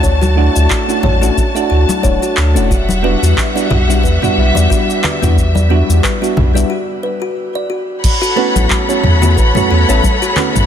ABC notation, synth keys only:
X:1
M:4/4
L:1/16
Q:"Swing 16ths" 1/4=90
K:Amix
V:1 name="Synth keys"
z2 [A,DEF]3 [A,CDEF]2 [A,CDEF] z [A,DEF]3 [A,DEF]3 [A,CDEF] | z2 [G,B,DEF]3 [G,B,DEF]2 [G,B,DEF] z [G,B,DEF]3 [G,B,DEF]3 [G,B,DEF] | z2 [G,B,DEF]3 [G,B,DEF]2 [G,B,DEF] z8 | z2 [A,B,CEF]3 [A,B,CEF]2 [A,B,CEF] z [A,B,CEF]2 [A,B,CEA] z2 [A,B,CEF]2 |]